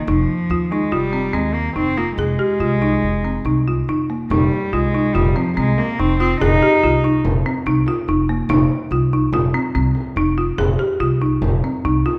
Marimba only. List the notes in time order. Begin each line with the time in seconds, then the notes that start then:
0.08 D#4
0.51 F4
0.72 D#4
0.92 F4
1.13 C4
1.33 C4
1.76 D#4
1.98 F4
2.19 G#4
2.39 G4
2.60 F4
2.82 D#4
3.25 C4
3.46 D#4
3.68 F4
3.89 D#4
4.10 A#3
4.32 D#4
4.73 F4
4.94 D#4
5.15 F4
5.36 C4
5.57 C4
6.00 D#4
6.20 F4
6.41 G#4
6.62 G4
6.84 F4
7.04 D#4
7.46 C4
7.67 D#4
7.88 F4
8.09 D#4
8.29 A#3
8.50 D#4
8.92 F4
9.13 D#4
9.34 F4
9.54 C4
9.75 C4
10.17 D#4
10.38 F4
10.58 G#4
10.79 G4
11.00 F4
11.22 D#4
11.64 C4
11.85 D#4
12.06 F4